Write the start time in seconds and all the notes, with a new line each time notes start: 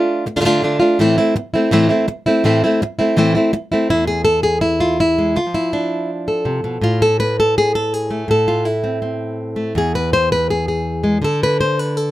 Already playing: A3 D4 F4
0.26 muted nylon-string guitar stroke
0.36 D3 A3 D4 F4
0.41 A3 D4 F4
0.45 D3 A3 D4 F4
0.62 D3 A3 D4 F4
0.80 A3 D4 F4
0.99 A2 E3 A3 C4 E4
1.18 A3 C4 E4
1.36 muted nylon-string guitar stroke
1.54 A3 C4 E4
1.71 A2 E3 A3 C4 E4
1.89 A3 C4 E4
2.08 muted nylon-string guitar stroke
2.26 A3 C4 E4
2.44 A2 E3 A3 C4 E4
2.64 A3 C4 E4
2.82 muted nylon-string guitar stroke
2.99 A3 C4 E4
3.16 A2 E3 A3 C4 E4
3.35 A3 C4 E4
3.53 muted nylon-string guitar stroke
3.72 A3 C4 E4
3.90 E2 E4
4.07 G#4
4.25 A4
4.43 G#4
4.61 E4
4.80 F4
5.00 E4
5.18 G#3
5.36 D3 F4
5.47 F3
5.54 E4
5.73 D4
6.28 A4
6.45 C3
6.64 B2
6.82 A2 F4
7.02 A4
7.20 B4
7.40 A4
7.58 G#4
7.75 A4
7.94 G#4
8.10 A3
8.28 A2 A4
8.48 F4
8.65 E4
8.84 C4
9.02 C4
9.56 A3
9.75 E2 G#4
9.95 B4
10.13 C5
10.32 B4
10.50 G#4
10.68 G#4
11.04 G#3
11.22 D3 A4
11.43 B4
11.61 C5
11.79 B4
11.97 A4